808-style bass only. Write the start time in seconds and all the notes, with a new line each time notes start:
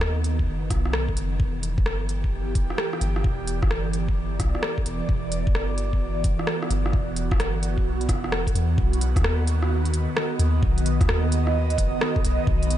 Already playing: D#2
0.48 F#1
0.71 B1
1.17 F#1
1.40 E1
1.78 G1
3.01 G1
3.24 E1
3.63 G1
4.40 B1
4.86 E1
5.09 E1
5.47 G1
6.70 G1
6.93 E1
7.31 G1
7.85 B1
8.09 E1
8.54 E2
8.78 B1
9.16 D#2
10.39 D#2
10.63 B1
11.01 D#2
11.78 F#1
12.24 B1
12.47 B1